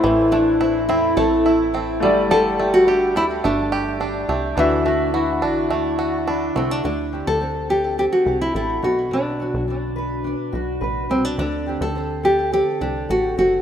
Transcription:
X:1
M:4/4
L:1/16
Q:1/4=106
K:Dmix
V:1 name="Nylon-string guitar"
E2 D4 E2 A6 z2 | A3 F3 E2 D8 | E12 z2 C D | D3 A3 G2 G F2 E E2 F2 |
D4 z8 z2 C D | D3 A3 G2 G2 D2 F2 F2 |]
V:2 name="Steel-string acoustic guitar"
[A,,CE]2 E2 C2 E2 C2 E2 C2 G,2 | G,2 G2 D2 G2 D2 G2 D2 G2 | D,2 F2 E2 F2 E2 F2 E2 F2 | D,2 G2 C2 A2 C2 G2 A2 B,,2 |
B,,2 F2 D2 B2 D2 F2 B2 D2 | D,2 G2 C2 A2 C2 G2 A2 C2 |]
V:3 name="Upright piano"
[A,Ec]12- [A,Ec]2 [G,A,d]2- | [G,A,d]12- [G,A,d]2 z2 | [DFe]16 | z16 |
z16 | z16 |]
V:4 name="Five-string banjo"
[E,A,CE]2 A,2 E2 C2 A,2 E2 C2 D,2 | D,2 A,2 G2 D2 A,2 G2 D2 A,2 | E,2 A,2 F2 D2 A,2 F2 D2 A,2 | z16 |
z16 | z16 |]
V:5 name="Analog synth bass" clef=bass
A,,,6 E,,2 A,,,6 G,,,2- | G,,,6 D,,2 G,,,6 C,,2 | D,,6 A,,,2 D,,6 C,,2 | D,,3 D,,6 z C,,2 A,,,2 B,,,2- |
B,,,3 B,,,6 z B,,,2 A,,,2 C,,2 | D,,3 D,,6 z C,,2 A,,,2 F,,,2 |]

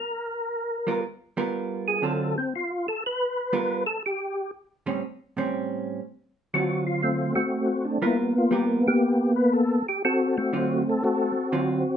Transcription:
X:1
M:4/4
L:1/8
Q:"Swing" 1/4=120
K:G
V:1 name="Tonewheel organ"
_B4 z3 ^G | A C ^E A B3 A | G2 z6 | z2 F ^E E F2 D |
E =F G G2 B A G | A F2 A A2 z2 |]
V:2 name="Tonewheel organ"
z8 | z8 | z8 | z4 [A,C] [A,C]3 |
[^A,B,]3 [A,B,]4 z | [CF] [A,C]3 [CF]4 |]
V:3 name="Hollow-body jazz guitar"
z3 [G,B,=F^A] z [G,B,FA]3 | [D,F,C^E] z4 z [G,B,=F^A] z | z3 [A,,G,^B,^C] z [A,,G,B,C]3 | z2 [D,F,C^E]3 z3 |
[G,B,=F^A] z [G,B,FA] z4 z | z2 [D,F,C^E] z3 [D,F,CE] z |]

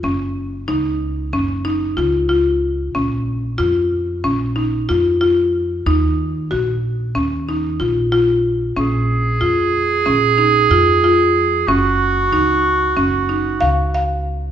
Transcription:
X:1
M:9/8
L:1/8
Q:3/8=62
K:Bbm
V:1 name="Clarinet"
z8 z | z8 z | z8 z | A8- A |
G8 z |]
V:2 name="Marimba"
D2 E2 D E F F2 | D2 F2 D E F F2 | E2 G2 D E F F2 | D2 F2 D E F F2 |
D2 E2 D E f f2 |]
V:3 name="Upright bass" clef=bass
G,,,2 D,,2 G,,,2 D,,3 | B,,,2 F,,2 B,,,2 F,,3 | E,,2 B,,,2 E,,2 B,,,3 | B,,,2 F,,2 B,,,2 F,,3 |
G,,,2 D,,2 G,,,2 D,,3 |]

